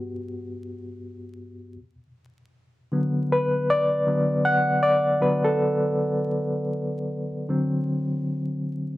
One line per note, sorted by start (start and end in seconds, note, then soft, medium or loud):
0.00 1.74 G2 medium
0.00 1.75 B3 medium
0.00 1.75 F#4 soft
2.92 3.45 D3 medium
2.92 3.46 F#3 soft
2.92 3.46 B3 medium
3.32 3.70 B4 medium
3.70 4.47 D5 loud
4.07 4.41 D3 soft
4.07 4.41 F#3 soft
4.07 4.41 B3 medium
4.45 4.80 F#5 loud
4.83 5.18 D5 loud
5.21 6.30 D3 soft
5.21 6.30 F#3 medium
5.21 6.31 B3 medium
5.21 5.44 B4 medium
5.44 7.30 A4 medium
7.49 8.97 D3 soft
7.49 8.97 F#3 soft
7.49 8.97 C4 medium